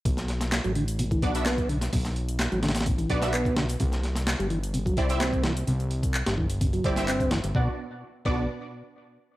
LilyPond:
<<
  \new Staff \with { instrumentName = "Synth stab" } { \time 4/4 \key b \phrygian \tempo 4 = 128 r2 r8 <b d' fis' d''>16 <b d' fis' e''>16 r4 | r2 r8 <b d' fis' d''>16 <b d' fis' e''>16 r4 | r2 r8 <c' e' g' d''>16 <c' e' g' e''>16 r4 | r2 r8 <c' e' g' d''>16 <c' e' g' e''>16 r4 |
<b d' fis' d''>16 r4 r16 <b d' fis' d''>8 r2 | }
  \new Staff \with { instrumentName = "Tonewheel organ" } { \clef bass \time 4/4 \key b \phrygian b,16 r4 fis16 d16 r16 b,16 e16 r8 b8 d16 r16 | b,16 r4 fis16 d16 r16 b,16 e16 r8 b8 d16 r16 | c16 r4 g16 e16 r16 c16 fis16 r8 c'8 e16 r16 | c16 r4 g16 e16 r16 c16 fis16 r8 c'8 e16 r16 |
b,16 r4 r16 b,8 r2 | }
  \new Staff \with { instrumentName = "Analog synth bass" } { \clef bass \time 4/4 \key b \phrygian b,,4~ b,,16 a,,4~ a,,16 b,,4. | b,,4~ b,,16 a,,4~ a,,16 b,,4. | c,4~ c,16 g,,4~ g,,16 c,4. | c,4~ c,16 g,,4~ g,,16 g,,4~ g,,16 g,,16 |
b,,16 r4 r16 b,,8 r2 | }
  \new DrumStaff \with { instrumentName = "Drums" } \drummode { \time 4/4 <hh bd>16 <hh sn>16 <hh sn>16 <hh sn>16 <hc hh sn>16 hh16 hh16 hh16 hh16 <hh bd>16 <hh bd>16 hh16 <hc hh sn>16 <hh bd>16 hh16 <hh sn>16 | <hh hho bd>16 <hh sn>16 hh16 hh16 <hc hh sn>16 hh16 <hh sn>32 <hh sn>32 <hh sn>32 <hh sn>32 <hh bd>16 hh16 <hh bd>16 <hh sn>16 <hc hh>16 <hh bd>16 <hh sn>16 hh16 | <hh bd>16 <hh sn>16 <hh sn>16 <hh sn>16 <hc hh sn>16 hh16 hh16 hh16 hh16 <hh bd>16 <hh bd>16 hh16 <hc hh sn>16 <hh bd>16 <hh sn>16 hh16 | hh16 hh16 hh16 <hh bd>16 <hc hh>16 <hh sn>16 bd16 hh16 <hh bd>16 hh16 <hh bd>16 <hh sn>16 <hc hh>16 <hh bd>16 <hh sn>16 hh16 |
bd4 r8 bd8 r4 r4 | }
>>